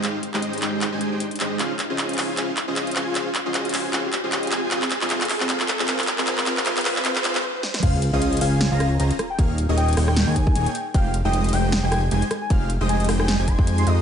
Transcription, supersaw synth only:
X:1
M:4/4
L:1/16
Q:"Swing 16ths" 1/4=154
K:Fm
V:1 name="Supersaw synth"
[A,EGcf] z2 [A,EGce]3 [A,EGcg]3 [A,EGca]2 [A,EGcg] z2 [A,EGce]2 | [DFAcf] z2 [DFAce]3 [DFAca]2 [DFAcf] z2 [DFAce]3 [DFAca]2 | [DFAcf] z2 [DFAce]3 [DFAca]2 [DFAcf] z2 [DFAce]3 [CFAca]2 | [CFAcf] z2 [CFAce] [CFAcf] z2 [CFAce] [CFAcf] z2 [CFAce] [CFAcf] z2 [CFAce] |
[CFAcf] z [CFAcf] z [CFAcf] z [CFAcf] z [CFAcf] z [CFAcf] z4 z | [DFAcf] z2 [DFAce]3 [DFAca]3 [DFAcb]2 z [DFAcb] z3 | [B,EAdf] z2 [B,EAde]3 [B,EAdg]3 [B,EAda]2 z [B,EAda] z3 | [A,EGcf] z2 [A,EGce]3 [A,EGcg]3 [A,EGca]2 z [A,EGca] z3 |
[A,EGcf] z2 [A,EGce]3 [A,EGcg]3 [A,EGca]2 [A,EGca]3 [A,EGce]2 |]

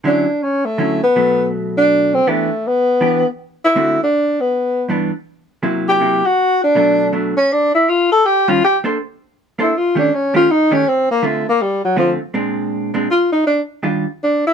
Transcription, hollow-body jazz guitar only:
X:1
M:3/4
L:1/8
Q:"Swing" 1/4=161
K:D
V:1 name="Hollow-body jazz guitar"
[D,F,CE] z3 [D,F,CE] z | [B,,F,A,]4- [B,,F,A,] z | [E,B,DG] z3 [E,B,DG] z | z2 [D,A,=CF] z3 |
z2 [G,,E,B,D] z3 | [=C,F,_B,E]2 [C,F,B,E] z3 | [B,,F,A,D]2 [B,,F,A,D] z3 | z3 [_E,G,_D=F] z [_B,=DA=c] |
[K:Bb] z3 [B,DAc] z [E,A,_DG] | z [E,A,_DG] z [E,A,DG] z2 | [D,A,CF] z3 [D,A,CF] z | [B,,_A,CD]3 [B,,A,CD] z2 |
z2 [E,G,DF] z3 |]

